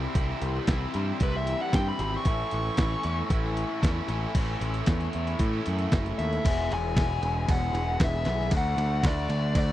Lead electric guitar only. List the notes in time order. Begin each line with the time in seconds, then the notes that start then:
1.23 B4
1.36 E5
1.61 F#5
1.74 G5
1.88 B5
2.17 C#6
2.55 C#6
6.18 E5
6.74 G#5
7.51 F#5
8.04 E5
8.57 F#5
9.07 D5
9.58 D5